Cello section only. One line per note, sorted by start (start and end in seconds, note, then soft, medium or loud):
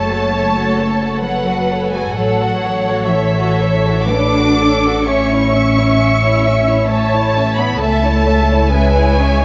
0.00 1.22 A3 soft
1.21 1.92 F#3 soft
1.91 2.14 G#3 soft
2.14 3.09 F#3 soft
3.08 4.10 E3 soft
4.09 5.05 D4 medium
5.05 6.88 C#4 soft
6.88 7.55 A3 medium
7.55 7.79 B3 medium
7.79 8.70 A3 medium
8.71 9.45 G#3 medium